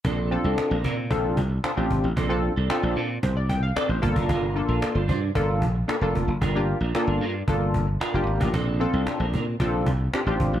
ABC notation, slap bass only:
X:1
M:4/4
L:1/16
Q:1/4=113
K:Bb
V:1 name="Slap bass" clef=bass
B,,,3 C,, z B,,, B,,2 B,,,2 C,,2 z A,,, _A,,, =A,,, | B,,,3 C,, z B,,, B,,2 C,,2 C,,2 z A,,, G,,, ^F,,, | G,,,3 B,,, z G,,, G,,2 G,,,2 B,,,2 z F,,, F,,, ^F,,, | G,,,3 B,,, z G,,, G,,2 G,,,2 G,,,2 z F,,, _A,,, =A,,, |
B,,,3 C,, z B,,, B,,2 B,,,2 C,,2 z A,,, _A,,, =A,,, |]